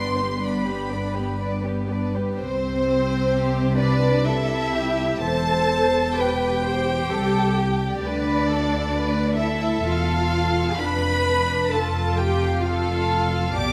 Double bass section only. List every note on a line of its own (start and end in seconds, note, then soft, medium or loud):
0.00 2.14 G1 soft
2.39 5.18 C2 medium
5.23 7.06 E1 medium
7.10 8.02 C2 medium
8.02 9.80 D2 medium
9.83 10.79 E1 medium
10.81 13.53 F1 medium
13.56 13.73 B1 medium